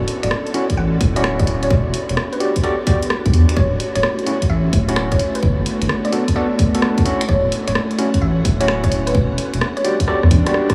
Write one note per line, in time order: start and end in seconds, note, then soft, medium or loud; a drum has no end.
0.00 1.69 C#4 medium
0.00 1.69 E4 medium
0.00 7.02 F#4 medium
0.00 1.69 A4 medium
0.08 open hi-hat loud
0.23 0.29 D1 medium
0.23 0.29 D5 medium
0.23 finger snap soft
0.23 closed hi-hat medium
0.31 cross-stick loud
0.47 closed hi-hat soft
0.54 0.65 C#4 medium
0.54 0.65 E4 medium
0.54 0.65 F#4 medium
0.54 open hi-hat medium
0.70 kick medium
0.70 closed hi-hat medium
0.77 0.97 A1 loud
0.77 0.95 F#5 loud
1.01 1.67 D1 medium
1.01 kick loud
1.01 open hi-hat loud
1.16 1.70 C#4 loud
1.16 1.69 E4 medium
1.16 1.70 F#4 loud
1.16 1.22 D5 medium
1.16 closed hi-hat medium
1.24 finger snap medium
1.24 cross-stick loud
1.39 1.46 D5 medium
1.39 kick loud
1.39 closed hi-hat medium
1.47 open hi-hat medium
1.63 1.74 C#5 loud
1.63 closed hi-hat medium
1.70 1.82 E1 loud
1.70 3.55 B3 medium
1.70 3.55 D4 medium
1.70 3.55 G4 medium
1.70 kick loud
1.86 1.92 E1 loud
1.94 open hi-hat loud
2.09 2.15 E1 medium
2.09 finger snap soft
2.09 closed hi-hat medium
2.17 cross-stick loud
2.32 2.43 B4 medium
2.32 closed hi-hat soft
2.40 2.51 F#4 medium
2.40 2.51 G4 medium
2.40 2.51 D5 medium
2.40 open hi-hat medium
2.56 kick medium
2.56 closed hi-hat medium
2.63 2.74 F#4 medium
2.63 2.74 G4 medium
2.63 2.84 A4 loud
2.63 2.74 D5 loud
2.63 closed hi-hat soft
2.87 2.98 F#4 medium
2.87 2.98 G4 medium
2.87 2.98 D5 loud
2.87 kick loud
2.87 open hi-hat loud
3.02 closed hi-hat medium
3.10 cross-stick loud
3.26 3.31 B1 loud
3.26 kick loud
3.26 closed hi-hat medium
3.33 3.45 E2 medium
3.33 open hi-hat medium
3.49 finger snap medium
3.49 closed hi-hat medium
3.56 3.68 D1 medium
3.56 9.11 A3 medium
3.56 5.18 C#4 medium
3.56 5.18 E4 medium
3.56 3.74 C#5 loud
3.56 kick loud
3.72 3.78 D1 loud
3.80 open hi-hat loud
3.95 4.01 D1 medium
3.95 4.02 C#5 medium
3.95 finger snap soft
3.95 closed hi-hat medium
4.03 cross-stick loud
4.19 closed hi-hat soft
4.26 4.37 C#4 medium
4.26 4.37 E4 medium
4.26 4.37 F#4 medium
4.26 open hi-hat medium
4.42 kick medium
4.42 closed hi-hat medium
4.49 4.69 A1 medium
4.49 4.67 E5 loud
4.73 5.16 D1 medium
4.73 kick loud
4.73 open hi-hat loud
4.88 5.18 C#4 loud
4.88 5.18 E4 medium
4.88 5.18 F#4 loud
4.88 4.95 C#5 medium
4.88 closed hi-hat medium
4.96 finger snap medium
4.96 cross-stick loud
5.12 5.18 C#5 medium
5.12 kick loud
5.12 closed hi-hat medium
5.19 7.04 B3 medium
5.19 7.04 D4 medium
5.19 open hi-hat medium
5.35 5.46 B4 loud
5.35 closed hi-hat medium
5.43 5.54 G1 loud
5.43 kick loud
5.58 5.64 G1 loud
5.66 open hi-hat loud
5.81 5.87 G1 medium
5.81 finger snap soft
5.81 closed hi-hat medium
5.89 cross-stick loud
6.05 6.16 D5 medium
6.05 closed hi-hat soft
6.12 6.23 B3 medium
6.12 6.23 F#4 medium
6.12 6.23 A4 medium
6.12 open hi-hat medium
6.28 kick medium
6.28 closed hi-hat medium
6.36 6.46 B3 medium
6.36 6.46 F#4 medium
6.36 6.46 A4 loud
6.36 6.56 D5 loud
6.59 kick loud
6.59 open hi-hat loud
6.75 7.04 B3 medium
6.75 7.04 F#4 medium
6.75 7.04 A4 loud
6.75 closed hi-hat medium
6.82 cross-stick loud
6.98 kick loud
6.98 closed hi-hat medium
7.05 9.13 C#4 medium
7.05 7.22 C#4 medium
7.05 9.13 E4 medium
7.05 7.22 E4 medium
7.05 7.22 F#4 loud
7.05 10.74 F#5 medium
7.05 open hi-hat medium
7.21 finger snap medium
7.21 closed hi-hat medium
7.29 7.40 D1 loud
7.29 7.46 C#5 loud
7.29 kick loud
7.44 7.50 D1 loud
7.52 open hi-hat loud
7.67 7.73 D1 medium
7.67 7.74 C#5 medium
7.67 finger snap soft
7.67 closed hi-hat medium
7.75 cross-stick loud
7.91 closed hi-hat soft
7.98 8.09 C#4 medium
7.98 8.09 E4 medium
7.98 8.09 F#4 medium
7.98 open hi-hat medium
8.14 kick medium
8.14 closed hi-hat medium
8.22 8.41 A1 medium
8.22 8.39 E5 loud
8.45 9.11 D1 medium
8.45 kick loud
8.45 open hi-hat loud
8.60 9.14 C#4 loud
8.60 9.14 E4 medium
8.60 9.14 F#4 loud
8.60 8.67 C#5 loud
8.60 closed hi-hat medium
8.68 finger snap medium
8.68 cross-stick loud
8.84 8.90 C#5 medium
8.84 kick loud
8.84 closed hi-hat medium
8.92 open hi-hat medium
9.07 9.18 B4 loud
9.07 closed hi-hat medium
9.15 9.26 E1 loud
9.15 10.74 G3 medium
9.15 10.74 B3 medium
9.15 10.74 D4 medium
9.15 kick loud
9.30 9.36 E1 loud
9.38 open hi-hat loud
9.54 9.59 E1 medium
9.54 finger snap soft
9.54 closed hi-hat medium
9.61 cross-stick loud
9.77 9.88 C#5 medium
9.77 closed hi-hat soft
9.84 9.95 F#4 medium
9.84 9.95 G4 medium
9.84 9.95 D5 medium
9.84 open hi-hat loud
10.00 kick medium
10.00 closed hi-hat medium
10.08 10.18 F#4 medium
10.08 10.18 G4 medium
10.08 10.28 A4 medium
10.08 10.18 D5 loud
10.08 cross-stick medium
10.08 swell medium
10.23 10.29 E2 loud
10.23 cross-stick medium
10.31 10.42 A1 medium
10.31 kick loud
10.31 open hi-hat loud
10.46 10.74 F#4 medium
10.46 10.74 G4 medium
10.46 10.74 D5 medium
10.46 cross-stick medium
10.46 closed hi-hat medium
10.54 cross-stick medium
10.70 kick loud
10.70 cross-stick medium
10.70 closed hi-hat medium